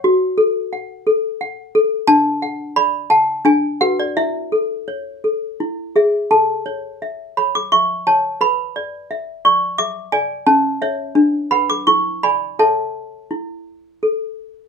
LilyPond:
\new Staff \with { instrumentName = "Toy piano" } { \time 3/4 \key a \major \tempo 4 = 86 << { fis''2~ fis''8 r8 | a''4 b''8 a''8 gis''8 fis''16 d''16 | e''2~ e''8 r8 | a''4. b''16 d'''16 cis'''8 a''8 |
b''4. cis'''8 d'''8 gis''8 | a''4. b''16 d'''16 cis'''8 b''8 | a''2 r4 | } \\ { fis'8 a'8 fis''8 a'8 fis''8 a'8 | d'8 fis''8 d''8 fis''8 d'8 <fis' b'>8 | e'8 a'8 cis''8 a'8 e'8 <gis' e''>8 | a'8 cis''8 e''8 cis''8 e''8 cis''8 |
b'8 d''8 e''8 d''8 e''8 d''8 | cis'8 <cis'' e''>8 d'8 <b' fis''>8 e'8 <d'' gis''>8 | <a' cis'' e''>4 e'4 a'4 | } >> }